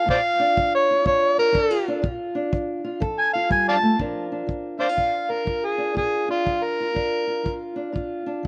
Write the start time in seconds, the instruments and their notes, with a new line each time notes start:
0.06 steel-string acoustic guitar A#2 F4, kick
0.10 harmonica C5 D5 F5
0.40 steel-string acoustic guitar D4
0.57 steel-string acoustic guitar F3, kick
0.75 harmonica C#5
0.91 steel-string acoustic guitar F4
1.04 steel-string acoustic guitar A#2 D4, harmonica C#5, kick
1.38 steel-string acoustic guitar A#4, harmonica A#4
1.52 steel-string acoustic guitar F3 D4, kick
1.71 steel-string acoustic guitar F4
1.88 steel-string acoustic guitar D4
2.02 steel-string acoustic guitar A#2 F4, kick
2.35 steel-string acoustic guitar D4
2.52 steel-string acoustic guitar F3, kick
2.84 steel-string acoustic guitar F4
3.00 steel-string acoustic guitar F3 A4, kick
3.19 harmonica G#5
3.34 steel-string acoustic guitar F4, harmonica F5
3.50 steel-string acoustic guitar G3, harmonica G#5, kick
3.69 harmonica D5 F5 A5
3.83 steel-string acoustic guitar A3
3.99 steel-string acoustic guitar A#2 F3 D4 F4 A#4, kick
4.32 steel-string acoustic guitar D4
4.47 steel-string acoustic guitar F3, kick
4.79 steel-string acoustic guitar D4, harmonica C5 D5 F5
4.89 steel-string acoustic guitar F4
4.96 steel-string acoustic guitar A#2 D4, kick
5.30 steel-string acoustic guitar A#4, harmonica A#4
5.45 steel-string acoustic guitar F3 F4, kick
5.65 harmonica G#4
5.78 steel-string acoustic guitar D4
5.95 steel-string acoustic guitar A#2 F4, harmonica G#4, kick
6.28 steel-string acoustic guitar D4, harmonica F4
6.45 steel-string acoustic guitar F3, kick
6.64 harmonica A#4
6.80 steel-string acoustic guitar F4
6.94 steel-string acoustic guitar A#2 D4, kick
7.27 steel-string acoustic guitar F4
7.43 steel-string acoustic guitar F3 F4, kick
7.76 steel-string acoustic guitar D4
7.92 steel-string acoustic guitar A#2 F4, kick
8.26 steel-string acoustic guitar D4
8.43 steel-string acoustic guitar F3